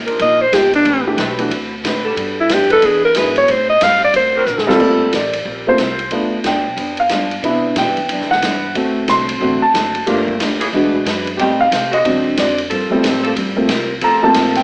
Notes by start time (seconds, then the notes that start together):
Already playing: D#2
0.06 F3 D4 D#4 A#4, ride
0.19 A#1 C3 A#3 D#4 F4 D#5, ride
0.41 C5
0.52 G1 C3 F3 A#3 D#4 F4 G4, snare, hi-hat pedal, ride
0.73 D4, ride
0.85 A1 A3 C4 G4 B4, ride
1.07 E3 A3 D4 G4
1.17 B1 A3 C4 G4 B4, snare, hi-hat pedal, ride
1.39 E3 A3 D4 F#4, ride
1.50 D2 D3 C4 F#4 B4, ride
1.83 A2 D3 C4 F#4 B4, snare, hi-hat pedal, ride
2.05 G3 D4 F#4 A4
2.16 G2 G3 B3 D4 F#4, ride
2.40 E4
2.49 F#2 G3 B3 D4 F#4, snare, hi-hat pedal, ride
2.53 G4
2.70 G#3 D4 E4 A4 B4, ride
2.82 E2 E3 B3 D4 G#4, ride
3.05 A#4
3.15 G#2 E3 F#3 B3 D4 E4 G#4 B4, snare, hi-hat pedal, ride
3.36 C#5, ride
3.48 A2 G3 C4 D#4 C5, ride
3.69 D#5
3.81 G2 A2 G3 C4 D#4 F5, snare, hi-hat pedal, ride
4.04 D5
4.13 D2 D3 C4 F#4 A#4 C5, ride
4.36 F#3 C4 D4 A#4
4.46 A#1 D3 C4 F#4 A#4, hi-hat pedal
4.58 snare
4.67 G3 C4 F4 A4, snare
4.80 G1 G3 A3 A#3 C4 F4 A#4, kick, crash
5.12 A1 G3 C4 F4 A#4 D5, snare, hi-hat pedal, ride
5.33 ride
5.45 A#1 G3 C4 F4 A#4
5.67 A3 A#3 C4 F4 C5
5.78 C2 G3 C4 F4 A#4, snare, hi-hat pedal, ride
5.99 ride
6.11 D2 G2 F3 A3 B3 D4 F4, ride
6.44 D#2 G2 F3 B3 D4 G5, snare, hi-hat pedal, ride
6.55 D2
6.66 B1
6.76 F2 G2 F3 B3 D4, ride
6.97 F5, ride
7.09 G2 F3 B3 D4, snare, hi-hat pedal, ride
7.31 ride
7.42 C3 E3 B3 D4 E4, ride
7.76 B2 C3 E3 B3 D4 G5, snare, hi-hat pedal, ride
7.87 G2
7.97 E2, ride
8.09 F#2 C3 E3 B3 D4, ride
8.20 E2, snare
8.31 C2 F#5, snare
8.42 G2 C3 E3 B3 D4, snare, hi-hat pedal, ride
8.75 D2 D3 A3 C4 F#4, ride
9.08 C2 D3 A3 C4 F#4 C6, snare, hi-hat pedal, ride
9.29 ride
9.41 A1 D3 A3 C4 F#4
9.62 A5, muted upright bass stroke
9.74 F#1 D3 A3 C4 F#4, snare, hi-hat pedal, ride
9.95 ride
10.06 G1 F3 G3 A3 A#3 D4 F4 G4 A#4, ride
10.28 kick
10.40 D2 G3 D4 F4 A#4, snare, hi-hat pedal, ride
10.60 E3 B3 D4 G#4, ride
10.72 E2 E3 G#3 D4 F#4 G#4 B4
10.84 D2
10.95 B1
11.05 F#2 E3 D4 G#4 B4, snare, hi-hat pedal, ride
11.27 ride
11.37 A2 D#3 G3 A3 C4 D#4 G4 G5, ride
11.42 C5
11.61 F5
11.71 C3 A3 D#4 G4 C5, snare, hi-hat pedal, ride
11.92 D3 G#3 C4 F#4 D#5, ride
12.04 G#2 D3 F#3 G#3 C4 D4 F#4 C5, ride
12.37 F2 G#3 D4 F#4 C5 D5, snare, hi-hat pedal, ride
12.58 ride
12.69 G2 F3 G3 C4 F4 A4 A#4, ride
12.90 F3 G3 A3 C4, muted upright bass stroke
13.02 A2 G3 C4 F4 A#4, snare, hi-hat pedal, ride
13.24 F3 A#3 C4 A4, ride
13.35 G2 G3 C4 F4 A#4, ride
13.56 F3 A3 A#3 C4
13.68 C2 G3 C4 F4 A#4, snare, hi-hat pedal, ride
14.01 D2 F3 G3 C4 F4 A4 A#4 A#5, ride
14.22 F3 A3 A#3 C4 A5
14.34 A#1 G3 C4 F4 A#4, snare, hi-hat pedal, ride
14.55 G5, snare, ride